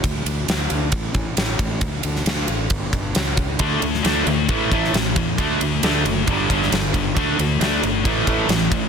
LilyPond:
<<
  \new Staff \with { instrumentName = "Distorted electric guitar" } { \clef bass \time 4/4 \key d \major \tempo 4 = 135 r1 | r1 | <d a d'>8 <d a>8 <d a d'>8 <d a>8 <a, e a>8 <a, e a>8 <a, e>8 <a, e>8 | <d a d'>8 <d a>8 <d a d'>8 <d a>8 <g, d g>8 <g, d g>8 <g, d>8 <g, d>8 |
<d a d'>8 <d a>8 <d a d'>8 <d a>8 <a, e a>8 <a, e a>8 <a, e>8 <a, e>8 | }
  \new Staff \with { instrumentName = "Overdriven electric guitar" } { \clef bass \time 4/4 \key d \major r1 | r1 | <d a d'>8 <d a>8 <d a d'>8 <d a>8 <a, e a>8 <a, e a>8 <a, e>8 <a, e>8 | <d a d'>8 <d a>8 <d a d'>8 <d a>8 <g, d g>8 <g, d g>8 <g, d>8 <g, d>8 |
<d a d'>8 <d a>8 <d a d'>8 <d a>8 <a, e a>8 <a, e a>8 <a, e>8 <a, e>8 | }
  \new Staff \with { instrumentName = "Fingered electric bass" } { \clef bass \time 4/4 \key d \major d,8 d,8 d,8 d,8 a,,8 a,,8 a,,8 a,,8 | d,8 d,8 d,8 a,,8 g,,8 g,,8 cis,4 | d,8 d,8 d,8 d,8 a,,8 a,,8 a,,8 e,8 | d,8 d,8 d,8 fis,,8 g,,8 g,,8 g,,4 |
d,8 d,8 d,8 g,,8 a,,8 a,,8 a,,8 a,,8 | }
  \new DrumStaff \with { instrumentName = "Drums" } \drummode { \time 4/4 <bd cymr>8 cymr8 <cymr sn>8 cymr8 <bd cymr>8 <bd cymr>8 <cymr sn>8 <bd cymr>8 | <bd cymr>8 cymr16 sn16 <cymr sn>8 cymr8 <bd cymr>8 <bd cymr>8 <cymr sn>8 <bd cymr>8 | <bd cymr>8 cymr16 sn16 <cymr sn>8 cymr8 <bd cymr>8 <bd cymr>16 sn16 <cymr sn>8 <bd cymr>8 | <bd cymr>8 cymr8 <cymr sn>8 cymr8 <bd cymr>8 <bd cymr>16 sn16 <cymr sn>8 <bd cymr>8 |
<bd cymr>8 cymr8 <cymr sn>8 cymr8 <bd cymr>8 <bd cymr>8 <cymr sn>8 <bd cymr>8 | }
>>